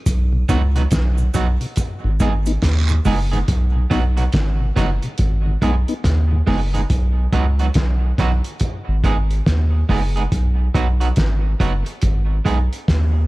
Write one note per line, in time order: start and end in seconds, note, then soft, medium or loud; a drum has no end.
0.06 0.44 B1 loud
0.06 kick loud
0.06 closed hi-hat medium
0.06 cabasa medium
0.33 0.38 B2 medium
0.49 0.87 C#2 medium
0.49 0.58 F#3 medium
0.49 0.61 F#3 medium
0.49 0.58 B3 medium
0.49 0.61 B3 medium
0.49 0.58 D#4 medium
0.49 0.61 D#4 medium
0.49 0.61 F#4 loud
0.49 kick loud
0.49 closed hi-hat medium
0.49 cabasa medium
0.75 0.81 B2 medium
0.75 0.82 F#3 medium
0.75 0.82 B3 medium
0.75 0.82 D#4 medium
0.75 0.81 F#4 medium
0.75 closed hi-hat soft
0.91 1.29 B1 medium
0.91 kick loud
0.91 snare loud
0.91 closed hi-hat medium
0.91 cabasa medium
1.18 1.24 B2 medium
1.18 cabasa soft
1.34 1.58 B1 medium
1.34 1.46 F#3 medium
1.34 1.43 F#3 medium
1.34 1.46 B3 medium
1.34 1.44 B3 medium
1.34 1.47 D#4 medium
1.34 1.44 D#4 medium
1.34 1.47 F#4 medium
1.34 kick medium
1.34 closed hi-hat medium
1.34 cabasa medium
1.61 1.66 B2 medium
1.61 closed hi-hat soft
1.76 kick loud
1.76 closed hi-hat medium
1.76 cabasa medium
2.04 2.18 G#1 medium
2.04 2.09 G#2 medium
2.04 2.09 D#3 medium
2.20 2.58 G#1 medium
2.20 2.32 G#3 medium
2.20 2.29 G#3 medium
2.20 2.29 B3 medium
2.20 2.32 B3 medium
2.20 2.29 D#4 medium
2.20 2.32 D#4 loud
2.20 2.33 G#4 medium
2.20 kick medium
2.20 closed hi-hat medium
2.20 cabasa medium
2.46 2.52 B3 medium
2.46 2.52 D#4 medium
2.46 closed hi-hat medium
2.46 cabasa medium
2.62 3.01 D#2 medium
2.62 kick loud
2.62 snare loud
2.62 closed hi-hat medium
2.62 long guiro medium
2.89 2.95 G#2 medium
2.89 2.95 D#3 medium
2.89 cabasa medium
3.05 3.43 F#1 medium
3.05 3.17 G#3 medium
3.05 3.15 G#3 medium
3.05 3.17 B3 medium
3.05 3.15 B3 medium
3.05 3.18 D#4 medium
3.05 3.15 D#4 medium
3.05 3.18 G#4 loud
3.05 kick medium
3.05 open hi-hat medium
3.05 cabasa medium
3.32 3.38 G#2 medium
3.32 3.38 D#3 medium
3.32 3.38 G#3 medium
3.32 3.38 B3 medium
3.32 3.38 D#4 medium
3.32 3.37 G#4 medium
3.32 closed hi-hat soft
3.48 3.86 B1 loud
3.48 kick loud
3.48 closed hi-hat medium
3.76 3.81 B2 medium
3.90 4.29 B1 loud
3.90 4.02 F#3 medium
3.90 4.00 F#3 medium
3.90 4.02 B3 medium
3.90 4.00 B3 medium
3.90 4.03 D#4 medium
3.90 4.00 D#4 medium
3.90 4.03 F#4 medium
3.90 kick loud
3.90 closed hi-hat medium
4.17 4.23 B2 medium
4.17 4.23 F#3 soft
4.17 4.23 B3 medium
4.17 4.23 D#4 medium
4.17 4.23 F#4 medium
4.17 closed hi-hat soft
4.33 4.71 G#1 medium
4.33 kick loud
4.33 snare loud
4.33 closed hi-hat medium
4.61 4.66 B2 medium
4.76 5.00 F#1 medium
4.76 4.88 F#3 medium
4.76 4.86 F#3 medium
4.76 4.88 B3 medium
4.76 4.86 B3 medium
4.76 4.88 D#4 medium
4.76 4.86 D#4 medium
4.76 4.89 F#4 medium
4.76 kick medium
4.76 snare medium
4.76 closed hi-hat medium
5.02 5.09 B2 medium
5.02 closed hi-hat medium
5.18 5.57 G#1 loud
5.18 kick loud
5.18 closed hi-hat medium
5.46 5.51 G#2 medium
5.46 5.51 D#3 medium
5.62 5.85 B1 medium
5.62 5.73 G#3 medium
5.62 5.71 G#3 medium
5.62 5.74 B3 medium
5.62 5.71 B3 medium
5.62 5.74 D#4 medium
5.62 5.71 D#4 medium
5.62 5.74 G#4 medium
5.62 kick medium
5.62 closed hi-hat medium
5.88 5.94 B3 medium
5.88 5.94 D#4 medium
5.88 closed hi-hat soft
6.04 6.42 D#2 medium
6.04 kick loud
6.04 snare loud
6.04 closed hi-hat medium
6.31 6.37 G#2 medium
6.31 6.37 D#3 medium
6.47 6.85 F#1 loud
6.47 6.59 G#3 medium
6.47 6.56 G#3 medium
6.47 6.59 B3 medium
6.47 6.56 B3 medium
6.47 6.59 D#4 medium
6.47 6.56 D#4 medium
6.47 6.59 G#4 medium
6.47 kick medium
6.47 open hi-hat medium
6.74 6.79 G#2 medium
6.74 6.79 D#3 medium
6.74 6.80 G#3 medium
6.74 6.80 B3 medium
6.74 6.80 D#4 medium
6.74 6.79 G#4 medium
6.74 closed hi-hat medium
6.90 7.28 B1 loud
6.90 kick loud
6.90 closed hi-hat medium
7.33 7.70 C#2 medium
7.33 7.44 F#3 medium
7.33 7.45 B3 medium
7.33 7.45 D#4 loud
7.33 7.45 F#4 loud
7.33 kick loud
7.33 closed hi-hat medium
7.59 7.66 F#3 medium
7.59 7.66 B3 medium
7.59 7.65 D#4 medium
7.59 7.65 F#4 medium
7.59 closed hi-hat soft
7.74 8.13 B1 medium
7.74 kick loud
7.74 snare loud
7.74 closed hi-hat medium
8.18 8.42 B1 medium
8.18 8.30 F#3 medium
8.18 8.30 B3 medium
8.18 8.31 D#4 medium
8.18 8.31 F#4 loud
8.18 kick medium
8.18 snare medium
8.18 closed hi-hat medium
8.44 closed hi-hat soft
8.60 kick loud
8.60 closed hi-hat medium
8.88 9.02 G#1 medium
9.04 9.42 G#1 medium
9.04 9.16 G#3 medium
9.04 9.16 B3 medium
9.04 9.16 D#4 medium
9.04 9.16 G#4 medium
9.04 kick medium
9.04 closed hi-hat medium
9.31 closed hi-hat soft
9.46 9.84 D#2 medium
9.46 kick loud
9.46 snare loud
9.46 closed hi-hat medium
9.89 10.27 F#1 medium
9.89 10.01 G#3 medium
9.89 10.01 B3 medium
9.89 10.01 D#4 medium
9.89 10.02 G#4 loud
9.89 kick medium
9.89 open hi-hat medium
10.16 10.22 G#3 medium
10.16 10.22 B3 medium
10.16 10.22 D#4 medium
10.16 10.21 G#4 medium
10.16 closed hi-hat medium
10.32 10.70 B1 loud
10.32 kick loud
10.32 closed hi-hat medium
10.75 11.12 B1 medium
10.75 10.86 F#3 medium
10.75 10.86 B3 medium
10.75 10.87 D#4 medium
10.75 10.87 F#4 medium
10.75 kick loud
10.75 closed hi-hat medium
11.00 11.07 F#3 medium
11.00 11.07 B3 medium
11.00 11.07 D#4 medium
11.00 11.06 F#4 medium
11.00 closed hi-hat soft
11.16 11.55 G#1 loud
11.16 kick loud
11.16 snare loud
11.16 closed hi-hat medium
11.60 11.83 F#1 medium
11.60 11.72 F#3 medium
11.60 11.72 B3 medium
11.60 11.72 D#4 medium
11.60 11.72 F#4 medium
11.60 kick medium
11.60 closed hi-hat medium
11.86 closed hi-hat soft
12.02 12.41 G#1 loud
12.02 kick loud
12.02 closed hi-hat loud
12.45 12.69 B1 medium
12.45 12.57 G#3 medium
12.45 12.57 B3 medium
12.45 12.57 D#4 medium
12.45 12.58 G#4 medium
12.45 kick medium
12.45 closed hi-hat medium
12.73 closed hi-hat soft
12.88 13.26 D#2 medium
12.88 kick loud
12.88 snare loud
12.88 closed hi-hat medium